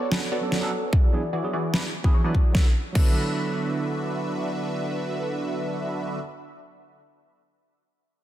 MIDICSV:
0, 0, Header, 1, 4, 480
1, 0, Start_track
1, 0, Tempo, 405405
1, 1096, Time_signature, 4, 2, 24, 8
1, 9755, End_track
2, 0, Start_track
2, 0, Title_t, "Supersaw synth"
2, 0, Program_c, 0, 81
2, 0, Note_on_c, 0, 59, 86
2, 0, Note_on_c, 0, 66, 77
2, 0, Note_on_c, 0, 69, 78
2, 0, Note_on_c, 0, 73, 79
2, 0, Note_on_c, 0, 74, 93
2, 353, Note_off_c, 0, 66, 0
2, 353, Note_off_c, 0, 69, 0
2, 353, Note_off_c, 0, 73, 0
2, 353, Note_off_c, 0, 74, 0
2, 354, Note_off_c, 0, 59, 0
2, 376, Note_on_c, 0, 59, 97
2, 376, Note_on_c, 0, 66, 92
2, 376, Note_on_c, 0, 73, 94
2, 376, Note_on_c, 0, 74, 107
2, 377, Note_on_c, 0, 69, 89
2, 1068, Note_off_c, 0, 59, 0
2, 1068, Note_off_c, 0, 66, 0
2, 1068, Note_off_c, 0, 69, 0
2, 1068, Note_off_c, 0, 73, 0
2, 1068, Note_off_c, 0, 74, 0
2, 1096, Note_on_c, 0, 64, 69
2, 1096, Note_on_c, 0, 66, 69
2, 1096, Note_on_c, 0, 68, 68
2, 1097, Note_on_c, 0, 52, 75
2, 1097, Note_on_c, 0, 74, 79
2, 1548, Note_off_c, 0, 52, 0
2, 1548, Note_off_c, 0, 64, 0
2, 1548, Note_off_c, 0, 66, 0
2, 1548, Note_off_c, 0, 68, 0
2, 1548, Note_off_c, 0, 74, 0
2, 1574, Note_on_c, 0, 74, 81
2, 1575, Note_on_c, 0, 52, 75
2, 1575, Note_on_c, 0, 64, 68
2, 1575, Note_on_c, 0, 66, 71
2, 1575, Note_on_c, 0, 68, 69
2, 1787, Note_off_c, 0, 52, 0
2, 1787, Note_off_c, 0, 64, 0
2, 1787, Note_off_c, 0, 66, 0
2, 1787, Note_off_c, 0, 68, 0
2, 1787, Note_off_c, 0, 74, 0
2, 1816, Note_on_c, 0, 64, 77
2, 1816, Note_on_c, 0, 66, 79
2, 1816, Note_on_c, 0, 68, 76
2, 1816, Note_on_c, 0, 74, 94
2, 1817, Note_on_c, 0, 52, 86
2, 2272, Note_off_c, 0, 64, 0
2, 2273, Note_off_c, 0, 52, 0
2, 2273, Note_off_c, 0, 66, 0
2, 2273, Note_off_c, 0, 68, 0
2, 2273, Note_off_c, 0, 74, 0
2, 2417, Note_on_c, 0, 52, 79
2, 2417, Note_on_c, 0, 64, 73
2, 2417, Note_on_c, 0, 66, 74
2, 2417, Note_on_c, 0, 68, 74
2, 2417, Note_on_c, 0, 76, 85
2, 2508, Note_off_c, 0, 52, 0
2, 2508, Note_off_c, 0, 64, 0
2, 2508, Note_off_c, 0, 66, 0
2, 2508, Note_off_c, 0, 68, 0
2, 2508, Note_off_c, 0, 76, 0
2, 2537, Note_on_c, 0, 52, 89
2, 2537, Note_on_c, 0, 64, 76
2, 2537, Note_on_c, 0, 66, 80
2, 2537, Note_on_c, 0, 68, 83
2, 2537, Note_on_c, 0, 73, 96
2, 2629, Note_off_c, 0, 52, 0
2, 2629, Note_off_c, 0, 64, 0
2, 2629, Note_off_c, 0, 66, 0
2, 2629, Note_off_c, 0, 68, 0
2, 2629, Note_off_c, 0, 73, 0
2, 2656, Note_on_c, 0, 64, 77
2, 2656, Note_on_c, 0, 66, 78
2, 2657, Note_on_c, 0, 52, 82
2, 2657, Note_on_c, 0, 68, 77
2, 2657, Note_on_c, 0, 74, 90
2, 2988, Note_off_c, 0, 52, 0
2, 2988, Note_off_c, 0, 64, 0
2, 2988, Note_off_c, 0, 66, 0
2, 2988, Note_off_c, 0, 68, 0
2, 2988, Note_off_c, 0, 74, 0
2, 3014, Note_on_c, 0, 62, 75
2, 3014, Note_on_c, 0, 66, 73
2, 3014, Note_on_c, 0, 71, 76
2, 3014, Note_on_c, 0, 76, 93
2, 3015, Note_on_c, 0, 50, 83
2, 3150, Note_off_c, 0, 50, 0
2, 3150, Note_off_c, 0, 62, 0
2, 3150, Note_off_c, 0, 66, 0
2, 3150, Note_off_c, 0, 71, 0
2, 3150, Note_off_c, 0, 76, 0
2, 3494, Note_on_c, 0, 62, 78
2, 3494, Note_on_c, 0, 71, 75
2, 3495, Note_on_c, 0, 50, 83
2, 3495, Note_on_c, 0, 66, 74
2, 3495, Note_on_c, 0, 76, 91
2, 7331, Note_off_c, 0, 62, 0
2, 7332, Note_off_c, 0, 50, 0
2, 7332, Note_off_c, 0, 66, 0
2, 7332, Note_off_c, 0, 71, 0
2, 7332, Note_off_c, 0, 76, 0
2, 9755, End_track
3, 0, Start_track
3, 0, Title_t, "Tine electric piano"
3, 0, Program_c, 1, 4
3, 125, Note_on_c, 1, 54, 88
3, 130, Note_on_c, 1, 59, 81
3, 136, Note_on_c, 1, 61, 78
3, 142, Note_on_c, 1, 62, 81
3, 147, Note_on_c, 1, 71, 94
3, 232, Note_off_c, 1, 54, 0
3, 235, Note_off_c, 1, 59, 0
3, 238, Note_off_c, 1, 61, 0
3, 241, Note_off_c, 1, 62, 0
3, 243, Note_off_c, 1, 71, 0
3, 486, Note_on_c, 1, 54, 73
3, 491, Note_on_c, 1, 59, 65
3, 497, Note_on_c, 1, 61, 68
3, 504, Note_on_c, 1, 62, 65
3, 509, Note_on_c, 1, 69, 78
3, 703, Note_off_c, 1, 54, 0
3, 705, Note_off_c, 1, 59, 0
3, 708, Note_off_c, 1, 61, 0
3, 712, Note_off_c, 1, 62, 0
3, 714, Note_off_c, 1, 69, 0
3, 725, Note_on_c, 1, 54, 91
3, 731, Note_on_c, 1, 59, 82
3, 737, Note_on_c, 1, 61, 84
3, 743, Note_on_c, 1, 62, 87
3, 749, Note_on_c, 1, 69, 101
3, 831, Note_off_c, 1, 54, 0
3, 834, Note_off_c, 1, 59, 0
3, 837, Note_off_c, 1, 61, 0
3, 840, Note_off_c, 1, 62, 0
3, 843, Note_off_c, 1, 69, 0
3, 1326, Note_on_c, 1, 54, 71
3, 1332, Note_on_c, 1, 59, 63
3, 1339, Note_on_c, 1, 62, 66
3, 1345, Note_on_c, 1, 64, 65
3, 1350, Note_on_c, 1, 68, 80
3, 1433, Note_off_c, 1, 54, 0
3, 1436, Note_off_c, 1, 59, 0
3, 1439, Note_off_c, 1, 62, 0
3, 1442, Note_off_c, 1, 64, 0
3, 1445, Note_off_c, 1, 68, 0
3, 1686, Note_on_c, 1, 54, 73
3, 1693, Note_on_c, 1, 59, 67
3, 1699, Note_on_c, 1, 62, 63
3, 1704, Note_on_c, 1, 64, 65
3, 1712, Note_on_c, 1, 68, 78
3, 1792, Note_off_c, 1, 54, 0
3, 1795, Note_off_c, 1, 59, 0
3, 1798, Note_off_c, 1, 62, 0
3, 1801, Note_off_c, 1, 64, 0
3, 1805, Note_off_c, 1, 68, 0
3, 2046, Note_on_c, 1, 54, 85
3, 2052, Note_on_c, 1, 59, 77
3, 2058, Note_on_c, 1, 62, 80
3, 2063, Note_on_c, 1, 64, 80
3, 2069, Note_on_c, 1, 71, 98
3, 2153, Note_off_c, 1, 54, 0
3, 2156, Note_off_c, 1, 59, 0
3, 2159, Note_off_c, 1, 62, 0
3, 2161, Note_off_c, 1, 64, 0
3, 2164, Note_off_c, 1, 71, 0
3, 2406, Note_on_c, 1, 54, 82
3, 2411, Note_on_c, 1, 59, 75
3, 2418, Note_on_c, 1, 62, 72
3, 2423, Note_on_c, 1, 64, 71
3, 2431, Note_on_c, 1, 68, 93
3, 2512, Note_off_c, 1, 54, 0
3, 2514, Note_off_c, 1, 59, 0
3, 2518, Note_off_c, 1, 62, 0
3, 2521, Note_off_c, 1, 64, 0
3, 2524, Note_off_c, 1, 68, 0
3, 2648, Note_on_c, 1, 54, 86
3, 2653, Note_on_c, 1, 59, 77
3, 2659, Note_on_c, 1, 62, 77
3, 2665, Note_on_c, 1, 64, 79
3, 2671, Note_on_c, 1, 71, 96
3, 2753, Note_off_c, 1, 54, 0
3, 2755, Note_off_c, 1, 59, 0
3, 2758, Note_off_c, 1, 62, 0
3, 2761, Note_off_c, 1, 64, 0
3, 2764, Note_off_c, 1, 71, 0
3, 2982, Note_on_c, 1, 54, 77
3, 3000, Note_on_c, 1, 59, 70
3, 3016, Note_on_c, 1, 62, 70
3, 3036, Note_on_c, 1, 64, 69
3, 3053, Note_on_c, 1, 69, 81
3, 3133, Note_off_c, 1, 54, 0
3, 3142, Note_off_c, 1, 59, 0
3, 3151, Note_off_c, 1, 62, 0
3, 3162, Note_off_c, 1, 64, 0
3, 3171, Note_off_c, 1, 69, 0
3, 3462, Note_on_c, 1, 54, 78
3, 3481, Note_on_c, 1, 59, 72
3, 3498, Note_on_c, 1, 62, 73
3, 3517, Note_on_c, 1, 64, 71
3, 3534, Note_on_c, 1, 69, 87
3, 7300, Note_off_c, 1, 54, 0
3, 7318, Note_off_c, 1, 59, 0
3, 7335, Note_off_c, 1, 62, 0
3, 7355, Note_off_c, 1, 64, 0
3, 7372, Note_off_c, 1, 69, 0
3, 9755, End_track
4, 0, Start_track
4, 0, Title_t, "Drums"
4, 137, Note_on_c, 9, 38, 119
4, 256, Note_off_c, 9, 38, 0
4, 616, Note_on_c, 9, 38, 60
4, 734, Note_off_c, 9, 38, 0
4, 1099, Note_on_c, 9, 36, 118
4, 1217, Note_off_c, 9, 36, 0
4, 2057, Note_on_c, 9, 38, 116
4, 2175, Note_off_c, 9, 38, 0
4, 2419, Note_on_c, 9, 36, 63
4, 2537, Note_off_c, 9, 36, 0
4, 2777, Note_on_c, 9, 36, 57
4, 2896, Note_off_c, 9, 36, 0
4, 3016, Note_on_c, 9, 38, 82
4, 3017, Note_on_c, 9, 36, 107
4, 3134, Note_off_c, 9, 38, 0
4, 3135, Note_off_c, 9, 36, 0
4, 3497, Note_on_c, 9, 36, 105
4, 3497, Note_on_c, 9, 49, 79
4, 3615, Note_off_c, 9, 36, 0
4, 3615, Note_off_c, 9, 49, 0
4, 9755, End_track
0, 0, End_of_file